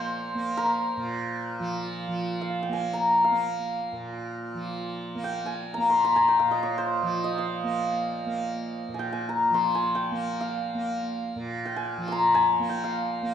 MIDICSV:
0, 0, Header, 1, 3, 480
1, 0, Start_track
1, 0, Tempo, 500000
1, 12808, End_track
2, 0, Start_track
2, 0, Title_t, "Santur"
2, 0, Program_c, 0, 15
2, 0, Note_on_c, 0, 72, 101
2, 0, Note_on_c, 0, 75, 67
2, 0, Note_on_c, 0, 77, 71
2, 551, Note_on_c, 0, 70, 91
2, 556, Note_off_c, 0, 75, 0
2, 568, Note_off_c, 0, 77, 0
2, 2317, Note_on_c, 0, 77, 67
2, 2337, Note_off_c, 0, 72, 0
2, 2521, Note_on_c, 0, 79, 64
2, 2620, Note_on_c, 0, 80, 70
2, 2678, Note_off_c, 0, 79, 0
2, 2817, Note_on_c, 0, 82, 77
2, 3109, Note_off_c, 0, 77, 0
2, 3113, Note_on_c, 0, 77, 65
2, 3266, Note_off_c, 0, 70, 0
2, 4528, Note_off_c, 0, 80, 0
2, 4609, Note_off_c, 0, 82, 0
2, 5030, Note_on_c, 0, 79, 77
2, 5242, Note_off_c, 0, 77, 0
2, 5242, Note_on_c, 0, 80, 76
2, 5300, Note_off_c, 0, 79, 0
2, 5510, Note_on_c, 0, 82, 79
2, 5663, Note_on_c, 0, 84, 82
2, 5801, Note_off_c, 0, 82, 0
2, 5805, Note_on_c, 0, 82, 80
2, 5909, Note_off_c, 0, 80, 0
2, 5913, Note_on_c, 0, 80, 89
2, 6031, Note_on_c, 0, 79, 71
2, 6089, Note_off_c, 0, 80, 0
2, 6139, Note_on_c, 0, 77, 69
2, 6252, Note_on_c, 0, 75, 78
2, 6364, Note_on_c, 0, 73, 71
2, 6421, Note_off_c, 0, 84, 0
2, 6505, Note_on_c, 0, 72, 80
2, 6563, Note_off_c, 0, 73, 0
2, 6947, Note_off_c, 0, 75, 0
2, 6950, Note_on_c, 0, 75, 79
2, 7083, Note_off_c, 0, 77, 0
2, 7087, Note_on_c, 0, 77, 63
2, 7596, Note_off_c, 0, 82, 0
2, 8030, Note_off_c, 0, 79, 0
2, 8585, Note_on_c, 0, 80, 62
2, 8632, Note_on_c, 0, 79, 79
2, 8690, Note_off_c, 0, 80, 0
2, 8760, Note_on_c, 0, 80, 72
2, 8818, Note_off_c, 0, 79, 0
2, 8918, Note_on_c, 0, 82, 72
2, 9035, Note_off_c, 0, 72, 0
2, 9161, Note_on_c, 0, 84, 85
2, 9216, Note_off_c, 0, 77, 0
2, 9235, Note_off_c, 0, 75, 0
2, 9354, Note_off_c, 0, 80, 0
2, 9358, Note_on_c, 0, 80, 75
2, 9552, Note_on_c, 0, 79, 76
2, 9610, Note_off_c, 0, 80, 0
2, 9991, Note_on_c, 0, 77, 71
2, 10709, Note_off_c, 0, 82, 0
2, 10830, Note_off_c, 0, 84, 0
2, 11184, Note_off_c, 0, 79, 0
2, 11188, Note_on_c, 0, 79, 70
2, 11293, Note_on_c, 0, 80, 83
2, 11351, Note_off_c, 0, 79, 0
2, 11594, Note_on_c, 0, 84, 69
2, 11635, Note_on_c, 0, 82, 88
2, 11848, Note_off_c, 0, 80, 0
2, 11852, Note_on_c, 0, 80, 92
2, 12120, Note_off_c, 0, 77, 0
2, 12185, Note_on_c, 0, 79, 77
2, 12243, Note_off_c, 0, 80, 0
2, 12325, Note_on_c, 0, 77, 71
2, 12808, Note_off_c, 0, 77, 0
2, 12808, Note_off_c, 0, 79, 0
2, 12808, Note_off_c, 0, 82, 0
2, 12808, Note_off_c, 0, 84, 0
2, 12808, End_track
3, 0, Start_track
3, 0, Title_t, "Tanpura"
3, 0, Program_c, 1, 104
3, 0, Note_on_c, 1, 46, 62
3, 0, Note_on_c, 1, 53, 61
3, 0, Note_on_c, 1, 58, 56
3, 334, Note_off_c, 1, 58, 0
3, 334, Note_on_c, 1, 58, 54
3, 925, Note_off_c, 1, 46, 0
3, 929, Note_on_c, 1, 46, 55
3, 1526, Note_off_c, 1, 53, 0
3, 1530, Note_on_c, 1, 53, 67
3, 1992, Note_off_c, 1, 53, 0
3, 1992, Note_on_c, 1, 53, 55
3, 2583, Note_off_c, 1, 58, 0
3, 2583, Note_on_c, 1, 58, 48
3, 3180, Note_off_c, 1, 58, 0
3, 3180, Note_on_c, 1, 58, 52
3, 3761, Note_off_c, 1, 46, 0
3, 3765, Note_on_c, 1, 46, 56
3, 4359, Note_off_c, 1, 53, 0
3, 4359, Note_on_c, 1, 53, 51
3, 4946, Note_off_c, 1, 58, 0
3, 4946, Note_on_c, 1, 58, 53
3, 5544, Note_off_c, 1, 58, 0
3, 5544, Note_on_c, 1, 58, 54
3, 6128, Note_off_c, 1, 46, 0
3, 6132, Note_on_c, 1, 46, 55
3, 6741, Note_off_c, 1, 53, 0
3, 6745, Note_on_c, 1, 53, 65
3, 7332, Note_off_c, 1, 58, 0
3, 7332, Note_on_c, 1, 58, 54
3, 7931, Note_off_c, 1, 58, 0
3, 7931, Note_on_c, 1, 58, 47
3, 8525, Note_off_c, 1, 46, 0
3, 8528, Note_on_c, 1, 46, 52
3, 9119, Note_off_c, 1, 53, 0
3, 9123, Note_on_c, 1, 53, 52
3, 9711, Note_off_c, 1, 58, 0
3, 9711, Note_on_c, 1, 58, 55
3, 10315, Note_off_c, 1, 58, 0
3, 10315, Note_on_c, 1, 58, 50
3, 10898, Note_off_c, 1, 46, 0
3, 10901, Note_on_c, 1, 46, 60
3, 11493, Note_off_c, 1, 53, 0
3, 11497, Note_on_c, 1, 53, 57
3, 12091, Note_off_c, 1, 58, 0
3, 12091, Note_on_c, 1, 58, 57
3, 12695, Note_off_c, 1, 58, 0
3, 12695, Note_on_c, 1, 58, 61
3, 12808, Note_off_c, 1, 46, 0
3, 12808, Note_off_c, 1, 53, 0
3, 12808, Note_off_c, 1, 58, 0
3, 12808, End_track
0, 0, End_of_file